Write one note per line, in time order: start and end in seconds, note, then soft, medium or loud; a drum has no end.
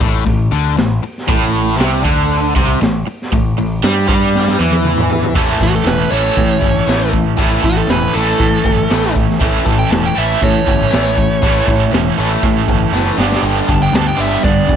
0.00 0.24 A1 medium
0.00 0.25 A2 loud
0.00 kick loud
0.00 open hi-hat medium
0.26 0.50 A1 medium
0.26 0.46 A2 medium
0.26 kick medium
0.26 open hi-hat medium
0.52 0.76 D2 medium
0.52 0.76 D3 medium
0.52 open hi-hat medium
0.77 1.01 A1 medium
0.77 0.98 A2 medium
0.77 snare medium
0.77 open hi-hat medium
1.03 muted picked electric bass stroke soft
1.03 muted distorted electric guitar stroke medium
1.03 open hi-hat medium
1.18 snare soft
1.28 1.76 A1 medium
1.28 1.76 A2 loud
1.28 kick loud
1.28 open hi-hat medium
1.54 open hi-hat medium
1.77 2.03 C2 medium
1.77 2.02 C3 loud
1.77 snare loud
1.77 open hi-hat medium
2.03 2.52 D2 medium
2.03 2.54 D3 loud
2.03 kick loud
2.03 open hi-hat medium
2.31 open hi-hat medium
2.55 2.79 C2 medium
2.55 2.80 C3 loud
2.55 kick loud
2.55 open hi-hat medium
2.81 3.04 A1 medium
2.81 3.02 A2 medium
2.81 snare medium
2.81 open hi-hat medium
3.07 muted distorted electric guitar stroke medium
3.07 muted overdriven electric guitar stroke medium
3.07 open hi-hat medium
3.22 snare soft
3.32 3.56 A1 medium
3.32 3.53 A2 medium
3.32 kick medium
3.32 open hi-hat medium
3.58 3.81 A1 medium
3.58 3.78 A2 medium
3.58 open hi-hat medium
3.83 4.07 G2 medium
3.83 4.07 G3 loud
3.83 snare loud
3.83 open hi-hat medium
4.08 4.56 G2 medium
4.08 4.58 G3 loud
4.08 kick loud
4.08 open hi-hat medium
4.35 snare medium
4.48 snare medium
4.59 5.32 E2 medium
4.59 5.34 E3 loud
4.59 high tom medium
4.72 high tom medium
4.85 mid tom medium
4.98 mid tom medium
5.10 floor tom loud
5.23 floor tom loud
5.35 5.53 A1 medium
5.35 5.59 A2 medium
5.35 5.59 E3 medium
5.35 5.60 A3 medium
5.35 6.11 C#4 loud
5.35 6.10 A4 loud
5.35 kick loud
5.35 crash loud
5.60 5.78 A1 medium
5.60 5.83 A2 medium
5.60 5.84 E3 medium
5.60 5.75 F#4 medium
5.60 kick medium
5.60 open hi-hat medium
5.75 5.87 A4 medium
5.84 6.04 E1 medium
5.84 6.08 A2 medium
5.84 6.08 E3 medium
5.84 6.11 B4 medium
5.84 snare loud
5.84 open hi-hat medium
6.10 6.29 A1 medium
6.10 6.34 A2 medium
6.10 6.35 E3 medium
6.10 6.35 A3 medium
6.10 7.39 C#4 medium
6.10 7.40 A4 medium
6.10 7.10 C#5 medium
6.10 open hi-hat medium
6.36 6.59 A2 medium
6.36 6.55 A2 medium
6.36 6.60 E3 medium
6.36 kick medium
6.36 open hi-hat medium
6.61 6.79 G1 medium
6.61 6.84 A2 medium
6.61 6.84 E3 medium
6.61 kick medium
6.61 open hi-hat soft
6.87 7.22 A1 medium
6.87 7.11 A2 medium
6.87 7.11 E3 medium
6.87 7.12 A3 loud
6.87 snare medium
6.87 open hi-hat medium
7.12 7.35 A2 medium
7.12 7.36 E3 medium
7.12 kick medium
7.12 open hi-hat soft
7.37 7.56 A1 medium
7.37 7.62 A2 medium
7.37 7.62 E3 medium
7.37 7.62 A3 medium
7.37 8.14 C#4 medium
7.37 8.13 A4 medium
7.37 kick loud
7.37 open hi-hat medium
7.63 7.81 A1 medium
7.63 7.86 A2 medium
7.63 7.86 E3 medium
7.63 7.77 F#4 medium
7.63 kick medium
7.63 open hi-hat medium
7.78 7.90 A4 medium
7.87 8.06 E1 medium
7.87 8.11 A2 medium
7.87 8.11 E3 medium
7.87 8.14 B4 medium
7.87 snare loud
7.87 open hi-hat medium
8.13 8.32 A1 medium
8.13 8.37 A2 medium
8.13 8.37 E3 medium
8.13 8.38 A3 medium
8.13 9.43 C#4 medium
8.13 9.43 A4 medium
8.13 9.13 A4 medium
8.13 open hi-hat medium
8.17 9.40 A2 medium
8.38 8.62 A2 medium
8.38 8.57 A2 medium
8.38 8.62 E3 medium
8.38 kick medium
8.38 open hi-hat medium
8.64 8.82 G1 medium
8.64 8.87 A2 medium
8.64 8.87 E3 medium
8.64 kick medium
8.64 open hi-hat soft
8.90 9.25 A1 medium
8.90 9.14 A2 medium
8.90 9.14 E3 medium
8.90 9.14 A3 medium
8.90 snare medium
8.90 open hi-hat medium
9.15 9.38 A2 medium
9.15 9.38 E3 medium
9.15 kick medium
9.15 open hi-hat medium
9.29 snare soft
9.39 9.58 A1 medium
9.39 9.64 A2 medium
9.39 9.64 E3 medium
9.39 9.64 A3 medium
9.39 10.16 C#4 loud
9.39 kick loud
9.39 open hi-hat medium
9.44 10.15 A4 medium
9.65 9.83 A1 medium
9.65 9.88 A2 medium
9.65 9.88 E3 medium
9.65 9.79 A5 loud
9.65 kick medium
9.65 open hi-hat medium
9.79 9.91 G5 medium
9.91 10.09 E1 medium
9.91 10.14 A2 medium
9.91 10.14 E3 medium
9.91 10.06 A5 medium
9.91 snare loud
9.91 open hi-hat medium
10.06 10.18 G5 medium
10.15 10.35 A1 medium
10.15 10.39 A2 medium
10.15 10.40 E3 loud
10.15 10.40 A3 loud
10.15 11.41 C#4 medium
10.15 11.46 A4 medium
10.15 10.42 E5 medium
10.15 open hi-hat medium
10.19 11.41 A2 medium
10.41 10.64 A2 medium
10.41 10.59 A2 medium
10.41 10.64 E3 medium
10.41 11.90 C#5 medium
10.41 kick loud
10.41 open hi-hat medium
10.66 10.85 G1 medium
10.66 10.89 A2 medium
10.66 10.89 E3 medium
10.66 kick medium
10.66 open hi-hat medium
10.90 11.27 A1 medium
10.90 11.15 A2 medium
10.90 11.15 E3 medium
10.90 11.15 A3 loud
10.90 snare medium
10.90 open hi-hat medium
11.16 11.39 A2 medium
11.16 11.40 E3 medium
11.16 kick medium
11.16 open hi-hat medium
11.42 11.60 A1 medium
11.42 11.65 A2 loud
11.42 11.66 E3 loud
11.42 11.66 A3 medium
11.42 12.17 C#4 loud
11.42 kick loud
11.42 open hi-hat medium
11.46 12.17 A4 medium
11.67 11.85 A1 medium
11.67 11.90 A2 medium
11.67 11.90 E3 medium
11.67 kick medium
11.67 open hi-hat medium
11.91 12.10 E1 medium
11.91 12.15 A2 medium
11.91 12.15 E3 medium
11.91 snare loud
11.91 open hi-hat medium
12.18 12.36 A1 medium
12.18 12.42 A2 medium
12.18 12.42 E3 medium
12.18 12.42 A3 medium
12.18 13.18 C#4 medium
12.18 13.20 A4 medium
12.18 open hi-hat medium
12.43 12.66 A2 medium
12.43 12.60 A2 medium
12.43 12.66 E3 medium
12.43 kick medium
12.43 open hi-hat medium
12.68 12.86 G1 medium
12.68 12.91 A2 medium
12.68 12.91 E3 medium
12.68 kick medium
12.68 open hi-hat soft
12.92 13.10 F#1 medium
12.92 13.17 A2 medium
12.92 13.17 E3 medium
12.92 13.17 A3 medium
12.92 snare medium
13.18 13.36 G1 medium
13.18 13.42 G2 medium
13.18 13.42 D3 loud
13.18 13.42 G3 medium
13.18 13.96 B3 medium
13.18 13.97 D4 loud
13.18 13.97 G4 loud
13.18 snare medium
13.32 snare medium
13.43 13.60 G1 medium
13.43 13.67 G2 medium
13.43 13.67 D3 medium
13.43 13.67 G3 loud
13.43 open hi-hat medium
13.68 13.86 G1 medium
13.68 13.91 G2 medium
13.68 13.91 D3 medium
13.68 13.81 A5 loud
13.68 kick medium
13.68 open hi-hat medium
13.83 13.95 G5 medium
13.92 14.11 D2 medium
13.92 14.16 G2 medium
13.92 14.16 D3 medium
13.92 14.76 G3 medium
13.92 14.76 B3 medium
13.92 14.07 A5 medium
13.92 snare loud
13.92 open hi-hat medium
13.97 14.76 D4 medium
13.97 14.76 G4 medium
14.08 14.20 G5 medium
14.17 14.36 G1 medium
14.17 14.42 G2 medium
14.17 14.42 D3 loud
14.17 14.42 G3 loud
14.17 14.44 E5 medium
14.17 open hi-hat medium
14.44 14.67 G2 medium
14.44 14.62 G2 medium
14.44 14.67 D3 medium
14.44 14.76 D5 loud
14.44 kick loud
14.44 open hi-hat medium
14.68 14.76 E1 medium
14.68 14.76 G2 medium
14.68 14.76 D3 medium
14.68 kick medium
14.68 open hi-hat medium